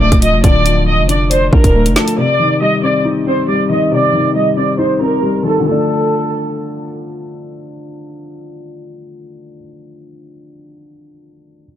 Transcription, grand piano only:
0, 0, Header, 1, 2, 480
1, 0, Start_track
1, 0, Tempo, 434783
1, 485, Time_signature, 4, 2, 24, 8
1, 12989, End_track
2, 0, Start_track
2, 0, Title_t, "Grand piano"
2, 0, Program_c, 0, 0
2, 0, Control_c, 0, 64, 127
2, 0, Note_on_c, 0, 50, 87
2, 0, Note_on_c, 0, 53, 79
2, 0, Note_on_c, 0, 57, 88
2, 0, Note_on_c, 0, 62, 76
2, 0, Note_on_c, 0, 74, 98
2, 1, Note_off_c, 0, 57, 0
2, 1, Note_on_c, 0, 57, 85
2, 248, Note_off_c, 0, 53, 0
2, 248, Note_on_c, 0, 53, 79
2, 486, Note_off_c, 0, 50, 0
2, 486, Note_on_c, 0, 50, 94
2, 706, Note_off_c, 0, 53, 0
2, 722, Note_on_c, 0, 53, 86
2, 723, Note_off_c, 0, 74, 0
2, 966, Note_off_c, 0, 62, 0
2, 1202, Note_on_c, 0, 62, 77
2, 1203, Note_off_c, 0, 57, 0
2, 1445, Note_on_c, 0, 74, 88
2, 1670, Note_off_c, 0, 62, 0
2, 1685, Note_off_c, 0, 50, 0
2, 1687, Note_on_c, 0, 62, 78
2, 1923, Note_off_c, 0, 53, 0
2, 1929, Note_on_c, 0, 57, 87
2, 2164, Note_on_c, 0, 53, 70
2, 2404, Note_off_c, 0, 53, 0
2, 2405, Note_off_c, 0, 74, 0
2, 2405, Note_on_c, 0, 48, 86
2, 2406, Note_off_c, 0, 62, 0
2, 2407, Note_off_c, 0, 57, 0
2, 2418, Control_c, 0, 64, 0
2, 2596, Control_c, 0, 64, 127
2, 2646, Note_on_c, 0, 51, 74
2, 2884, Note_on_c, 0, 55, 84
2, 3125, Note_on_c, 0, 60, 82
2, 3364, Note_on_c, 0, 63, 87
2, 3592, Note_off_c, 0, 60, 0
2, 3605, Note_off_c, 0, 48, 0
2, 3608, Note_on_c, 0, 60, 82
2, 3826, Note_off_c, 0, 55, 0
2, 3842, Note_on_c, 0, 55, 84
2, 3845, Note_off_c, 0, 51, 0
2, 4082, Note_on_c, 0, 51, 74
2, 4324, Note_on_c, 0, 48, 84
2, 4547, Note_off_c, 0, 51, 0
2, 4564, Note_off_c, 0, 63, 0
2, 4564, Note_on_c, 0, 51, 81
2, 4790, Note_off_c, 0, 55, 0
2, 4806, Note_off_c, 0, 60, 0
2, 4807, Note_on_c, 0, 55, 79
2, 5047, Note_on_c, 0, 60, 81
2, 5283, Note_on_c, 0, 63, 92
2, 5504, Note_off_c, 0, 60, 0
2, 5521, Note_on_c, 0, 60, 87
2, 5524, Note_off_c, 0, 48, 0
2, 5748, Note_off_c, 0, 55, 0
2, 5764, Note_off_c, 0, 51, 0
2, 5765, Note_on_c, 0, 55, 81
2, 6000, Note_on_c, 0, 51, 81
2, 6178, Note_on_c, 0, 50, 83
2, 6222, Note_on_c, 0, 53, 76
2, 6242, Note_off_c, 0, 51, 0
2, 6243, Note_off_c, 0, 60, 0
2, 6244, Note_off_c, 0, 63, 0
2, 6245, Note_off_c, 0, 55, 0
2, 6260, Control_c, 0, 64, 0
2, 6266, Note_on_c, 0, 57, 76
2, 6310, Note_on_c, 0, 62, 89
2, 6432, Control_c, 0, 64, 127
2, 10548, Note_off_c, 0, 50, 0
2, 10593, Note_off_c, 0, 53, 0
2, 10637, Note_off_c, 0, 57, 0
2, 10681, Note_off_c, 0, 62, 0
2, 12861, Control_c, 0, 64, 0
2, 12989, End_track
0, 0, End_of_file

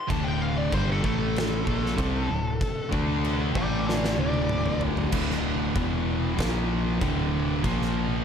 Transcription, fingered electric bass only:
0, 0, Header, 1, 2, 480
1, 0, Start_track
1, 0, Key_signature, -1, "minor"
1, 0, Tempo, 628931
1, 69, Time_signature, 4, 2, 24, 8
1, 3907, Key_signature, -1, "minor"
1, 6293, End_track
2, 0, Start_track
2, 0, Title_t, "Fingered electric bass"
2, 0, Program_c, 0, 33
2, 73, Note_on_c, 0, 26, 90
2, 519, Note_off_c, 0, 26, 0
2, 555, Note_on_c, 0, 31, 102
2, 774, Note_off_c, 0, 31, 0
2, 795, Note_on_c, 0, 33, 96
2, 1239, Note_off_c, 0, 33, 0
2, 1276, Note_on_c, 0, 34, 96
2, 1494, Note_off_c, 0, 34, 0
2, 1516, Note_on_c, 0, 36, 96
2, 1734, Note_off_c, 0, 36, 0
2, 1744, Note_on_c, 0, 26, 87
2, 1968, Note_off_c, 0, 26, 0
2, 2228, Note_on_c, 0, 38, 98
2, 2676, Note_off_c, 0, 38, 0
2, 2709, Note_on_c, 0, 33, 96
2, 3157, Note_off_c, 0, 33, 0
2, 3178, Note_on_c, 0, 26, 97
2, 3872, Note_off_c, 0, 26, 0
2, 3914, Note_on_c, 0, 26, 85
2, 4361, Note_off_c, 0, 26, 0
2, 4391, Note_on_c, 0, 28, 99
2, 4840, Note_off_c, 0, 28, 0
2, 4872, Note_on_c, 0, 34, 102
2, 5321, Note_off_c, 0, 34, 0
2, 5352, Note_on_c, 0, 26, 102
2, 5802, Note_off_c, 0, 26, 0
2, 5833, Note_on_c, 0, 34, 93
2, 6283, Note_off_c, 0, 34, 0
2, 6293, End_track
0, 0, End_of_file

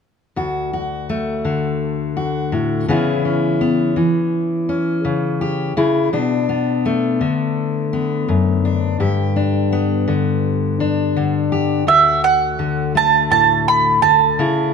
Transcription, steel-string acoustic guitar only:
0, 0, Header, 1, 2, 480
1, 0, Start_track
1, 0, Key_signature, 2, "major"
1, 0, Tempo, 719424
1, 247, Time_signature, 4, 2, 24, 8
1, 9833, End_track
2, 0, Start_track
2, 0, Title_t, "Steel-string acoustic guitar"
2, 0, Program_c, 0, 25
2, 243, Note_on_c, 0, 38, 44
2, 247, Note_on_c, 0, 66, 41
2, 482, Note_off_c, 0, 66, 0
2, 490, Note_on_c, 0, 66, 43
2, 730, Note_on_c, 0, 57, 40
2, 965, Note_on_c, 0, 50, 38
2, 1437, Note_off_c, 0, 66, 0
2, 1445, Note_on_c, 0, 66, 41
2, 1683, Note_on_c, 0, 45, 47
2, 1896, Note_off_c, 0, 66, 0
2, 1922, Note_off_c, 0, 45, 0
2, 1923, Note_off_c, 0, 38, 0
2, 1925, Note_off_c, 0, 50, 0
2, 1925, Note_on_c, 0, 49, 55
2, 1930, Note_on_c, 0, 52, 43
2, 1931, Note_off_c, 0, 57, 0
2, 1933, Note_on_c, 0, 59, 44
2, 1938, Note_on_c, 0, 61, 43
2, 1944, Note_on_c, 0, 64, 51
2, 2159, Note_off_c, 0, 61, 0
2, 2167, Note_on_c, 0, 61, 38
2, 2405, Note_off_c, 0, 59, 0
2, 2408, Note_on_c, 0, 59, 41
2, 2636, Note_off_c, 0, 52, 0
2, 2644, Note_on_c, 0, 52, 45
2, 2645, Note_off_c, 0, 49, 0
2, 3121, Note_off_c, 0, 61, 0
2, 3129, Note_on_c, 0, 61, 41
2, 3367, Note_on_c, 0, 49, 45
2, 3608, Note_off_c, 0, 64, 0
2, 3610, Note_on_c, 0, 67, 44
2, 3815, Note_off_c, 0, 52, 0
2, 3817, Note_off_c, 0, 49, 0
2, 3818, Note_off_c, 0, 61, 0
2, 3819, Note_off_c, 0, 67, 0
2, 3849, Note_on_c, 0, 49, 56
2, 3852, Note_on_c, 0, 64, 50
2, 3869, Note_off_c, 0, 59, 0
2, 4058, Note_off_c, 0, 49, 0
2, 4059, Note_off_c, 0, 64, 0
2, 4089, Note_on_c, 0, 47, 49
2, 4093, Note_on_c, 0, 62, 47
2, 4329, Note_on_c, 0, 59, 44
2, 4574, Note_on_c, 0, 57, 45
2, 4807, Note_off_c, 0, 47, 0
2, 4809, Note_on_c, 0, 50, 44
2, 5283, Note_off_c, 0, 59, 0
2, 5291, Note_on_c, 0, 59, 45
2, 5527, Note_on_c, 0, 42, 50
2, 5768, Note_off_c, 0, 62, 0
2, 5771, Note_on_c, 0, 62, 47
2, 5977, Note_off_c, 0, 42, 0
2, 5978, Note_off_c, 0, 59, 0
2, 6004, Note_off_c, 0, 62, 0
2, 6004, Note_on_c, 0, 43, 52
2, 6006, Note_on_c, 0, 67, 50
2, 6024, Note_off_c, 0, 57, 0
2, 6247, Note_on_c, 0, 62, 40
2, 6489, Note_on_c, 0, 59, 45
2, 6715, Note_off_c, 0, 50, 0
2, 6723, Note_on_c, 0, 50, 45
2, 7199, Note_off_c, 0, 62, 0
2, 7207, Note_on_c, 0, 62, 47
2, 7441, Note_off_c, 0, 50, 0
2, 7449, Note_on_c, 0, 50, 49
2, 7678, Note_off_c, 0, 67, 0
2, 7686, Note_on_c, 0, 67, 47
2, 7894, Note_off_c, 0, 43, 0
2, 7896, Note_off_c, 0, 62, 0
2, 7896, Note_off_c, 0, 67, 0
2, 7897, Note_off_c, 0, 50, 0
2, 7897, Note_off_c, 0, 59, 0
2, 7919, Note_on_c, 0, 38, 47
2, 7923, Note_on_c, 0, 66, 43
2, 8400, Note_on_c, 0, 50, 46
2, 8641, Note_on_c, 0, 57, 39
2, 8876, Note_on_c, 0, 45, 45
2, 9349, Note_off_c, 0, 50, 0
2, 9357, Note_on_c, 0, 50, 47
2, 9360, Note_off_c, 0, 45, 0
2, 9574, Note_off_c, 0, 66, 0
2, 9600, Note_off_c, 0, 50, 0
2, 9601, Note_off_c, 0, 38, 0
2, 9601, Note_on_c, 0, 49, 58
2, 9605, Note_on_c, 0, 64, 50
2, 9833, Note_off_c, 0, 49, 0
2, 9833, Note_off_c, 0, 57, 0
2, 9833, Note_off_c, 0, 64, 0
2, 9833, End_track
0, 0, End_of_file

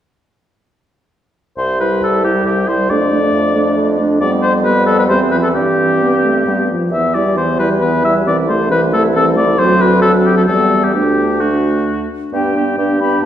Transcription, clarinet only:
0, 0, Header, 1, 2, 480
1, 0, Start_track
1, 0, Key_signature, 0, "major"
1, 0, Tempo, 446097
1, 1688, Time_signature, 3, 2, 24, 8
1, 7451, Key_signature, 1, "major"
1, 10792, Tempo, 456621
1, 14181, End_track
2, 0, Start_track
2, 0, Title_t, "Clarinet"
2, 0, Program_c, 0, 71
2, 1938, Note_on_c, 0, 64, 28
2, 2404, Note_off_c, 0, 64, 0
2, 2413, Note_on_c, 0, 64, 28
2, 2878, Note_off_c, 0, 64, 0
2, 2884, Note_on_c, 0, 64, 33
2, 3115, Note_off_c, 0, 64, 0
2, 3123, Note_on_c, 0, 62, 32
2, 3352, Note_off_c, 0, 62, 0
2, 3357, Note_on_c, 0, 62, 30
2, 3818, Note_off_c, 0, 62, 0
2, 3825, Note_on_c, 0, 62, 37
2, 4289, Note_off_c, 0, 62, 0
2, 4298, Note_on_c, 0, 62, 41
2, 4530, Note_off_c, 0, 62, 0
2, 4537, Note_on_c, 0, 59, 44
2, 4978, Note_off_c, 0, 59, 0
2, 5010, Note_on_c, 0, 59, 38
2, 5480, Note_off_c, 0, 59, 0
2, 5484, Note_on_c, 0, 60, 44
2, 5961, Note_off_c, 0, 60, 0
2, 5967, Note_on_c, 0, 60, 44
2, 6950, Note_on_c, 0, 59, 36
2, 6966, Note_off_c, 0, 60, 0
2, 7201, Note_off_c, 0, 59, 0
2, 7448, Note_on_c, 0, 59, 33
2, 7695, Note_on_c, 0, 64, 29
2, 7711, Note_off_c, 0, 59, 0
2, 7930, Note_on_c, 0, 59, 30
2, 7946, Note_off_c, 0, 64, 0
2, 8170, Note_on_c, 0, 64, 32
2, 8187, Note_off_c, 0, 59, 0
2, 8395, Note_off_c, 0, 64, 0
2, 8401, Note_on_c, 0, 59, 36
2, 8646, Note_on_c, 0, 64, 34
2, 8662, Note_off_c, 0, 59, 0
2, 8883, Note_off_c, 0, 64, 0
2, 8889, Note_on_c, 0, 60, 40
2, 9126, Note_on_c, 0, 64, 35
2, 9142, Note_off_c, 0, 60, 0
2, 9364, Note_on_c, 0, 60, 37
2, 9380, Note_off_c, 0, 64, 0
2, 9608, Note_on_c, 0, 64, 42
2, 9624, Note_off_c, 0, 60, 0
2, 9841, Note_off_c, 0, 64, 0
2, 9848, Note_on_c, 0, 60, 46
2, 10081, Note_on_c, 0, 64, 49
2, 10097, Note_off_c, 0, 60, 0
2, 10308, Note_off_c, 0, 64, 0
2, 10315, Note_on_c, 0, 60, 48
2, 10758, Note_off_c, 0, 60, 0
2, 10790, Note_on_c, 0, 60, 44
2, 11256, Note_off_c, 0, 60, 0
2, 11265, Note_on_c, 0, 59, 35
2, 11736, Note_off_c, 0, 59, 0
2, 11742, Note_on_c, 0, 62, 34
2, 12227, Note_off_c, 0, 62, 0
2, 12244, Note_on_c, 0, 62, 25
2, 12960, Note_off_c, 0, 62, 0
2, 13205, Note_on_c, 0, 62, 34
2, 13442, Note_off_c, 0, 62, 0
2, 13448, Note_on_c, 0, 62, 29
2, 13680, Note_off_c, 0, 62, 0
2, 13686, Note_on_c, 0, 62, 28
2, 13917, Note_off_c, 0, 62, 0
2, 13927, Note_on_c, 0, 62, 30
2, 14154, Note_off_c, 0, 62, 0
2, 14181, End_track
0, 0, End_of_file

